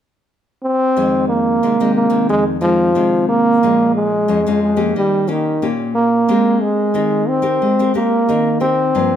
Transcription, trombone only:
0.63 C4
1.29 A#3
1.95 A#3
2.30 G#3
2.61 F3
3.28 A#3
3.95 G#3
4.62 G#3
4.97 G3
5.29 D#3
5.95 A#3
6.62 G#3
7.28 C4
7.95 A#3
8.61 C4

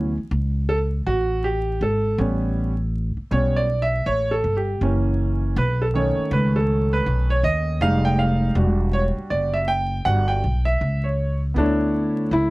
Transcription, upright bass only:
Already playing: D2
0.17 muted upright bass stroke
0.31 C#2
1.07 A1
1.81 G#1
2.18 A1
3.17 muted upright bass stroke
3.31 B1
4.06 A1
4.44 G1
4.81 F#1
5.56 B1
6.17 muted upright bass stroke
6.31 C#2
7.06 B1
7.43 D#2
7.81 F1
8.55 E1
9.17 muted upright bass stroke
9.31 F#1
10.06 G1
10.44 B1
10.81 C#2
11.56 D2
12.31 C#2

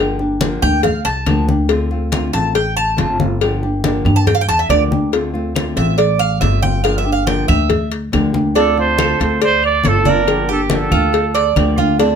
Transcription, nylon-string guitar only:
Already playing: D3
0.00 F3 A#3 D4 G4
0.19 A#3 D4 G4
0.40 D3 F3 A#3 D4 G4
0.62 A#3 D4 G4
0.84 muted nylon-string guitar stroke
1.27 D3 F3 A#3 D4 G4
1.48 A#3 D4 G4
1.69 D3 A3 C4 F4
1.91 A3 C4 F4
2.12 D3 A3 C4 F4
2.33 A3 C4 F4
2.55 muted nylon-string guitar stroke
2.97 D3 A3 C4 F4
3.19 A3 C4 F4
3.41 D3 F3 A#3 D4 G4
3.62 A#3 D4 G4
3.84 D3 F3 A#3 D4 G4
4.05 A#3 D4 G4
4.28 muted nylon-string guitar stroke
4.69 D3 F3 A#3 D4 G4
4.91 A#3 D4 G4
5.12 D3 A3 C4 F4
5.34 A3 C4 F4
5.55 D3 A3 C4 F4
5.76 A3 C4 F4
5.98 muted nylon-string guitar stroke
6.40 D3 A3 C4 F4
6.62 A3 C4 F4
6.83 D3 F3 A#3 D4 G4
7.05 A#3 D4 G4
7.27 D3 F3 A#3 D4 G4
7.48 A#3 D4 G4
7.69 muted nylon-string guitar stroke
8.12 D3 F3 A#3 D4 G4
8.33 A#3 D4 G4
8.55 D3 A3 C4 F4
8.78 A3 C4 F4
8.98 D3 A3 C4 F4
9.20 A3 C4 F4
9.42 muted nylon-string guitar stroke
9.85 D3 A3 C4 F4
10.07 A3 C4 F4
10.27 D3 F3 A#3 D4 G4
10.50 A#3 D4 G4
10.70 D3 F3 A#3 D4 G4
10.92 A#3 D4 G4
11.13 muted nylon-string guitar stroke
11.56 D3 F3 A#3 D4 G4
11.78 A#3 D4 G4
11.99 D3 A3 C4 F4

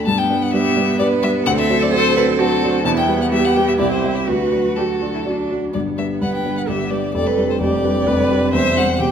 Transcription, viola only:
0.06 B3
1.47 C4
2.85 B3
3.79 E4
4.27 F#4
6.22 B4
6.68 G4
7.15 A4
7.61 G4
8.07 B4
8.54 C5
9.00 G4

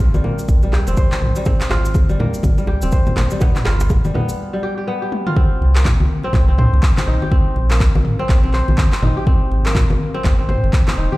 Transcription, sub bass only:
0.14 A#1
0.49 A#1
0.88 F1
1.22 A#1
1.70 G#1
2.09 G#1
2.44 G#1
2.83 D#1
3.17 G#1
3.66 G1
4.05 G1
5.61 C2
6.00 C2
6.34 C2
6.73 C2
7.07 A#1
7.56 A#1
7.95 A#1
8.29 A#1
8.68 A#1
9.02 G#1
9.51 G#1
9.90 G#1
10.24 G#1
10.63 G#1
10.97 D#1

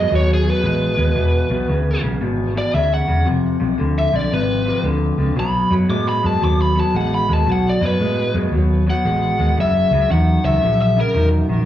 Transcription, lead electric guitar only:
Already playing: D#5
0.15 C#5
0.34 G#4
0.50 B4
2.58 D5
2.75 E5
2.94 F#5
3.98 E5
4.16 D5
4.33 B4
5.40 B5
5.90 D6
6.09 B5
6.26 A5
6.45 D6
6.62 B5
6.80 A5
6.96 F#5
7.14 B5
7.33 A5
7.52 F#5
7.69 D5
7.85 B4
8.90 F#5
9.60 E5
10.12 F#5
10.45 E5
10.82 E5
11.00 A#4

